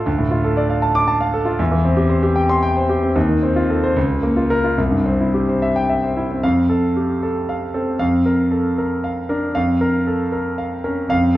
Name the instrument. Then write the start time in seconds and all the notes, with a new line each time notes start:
grand piano
0.06 D2
0.18 A2
0.31 F4
0.44 A4
0.57 D5
0.70 F5
0.82 A5
0.95 D6
1.08 A5
1.21 F5
1.34 A4
1.45 F4
1.59 E2
1.71 E3
1.85 C4
1.97 G4
2.09 C5
2.23 G4
2.36 G5
2.49 C6
2.63 G5
2.77 C5
2.89 G4
3.03 C4
3.16 D#2
3.29 D#3
3.43 C4
3.56 F4
3.70 A4
3.84 C5
3.96 C#2
4.10 C#3
4.23 A#3
4.36 F4
4.50 A#4
4.64 F4
4.78 C2
4.91 G2
5.06 C4
5.21 E4
5.34 G4
5.49 C5
5.62 E5
5.76 G5
5.90 E5
6.03 C5
6.17 E4
6.31 C4
6.43 F2 F5
6.69 A4
6.97 G4
7.23 A4
7.49 F5
7.74 C4 A4
7.99 F2 F5
8.26 A#4
8.51 A4
8.78 A#4
9.04 F5
9.29 D4 A#4
9.55 F2 F5
9.81 A#4
10.07 A4
10.32 A#4
10.58 F5
10.84 C#4 A#4
11.09 F2 F5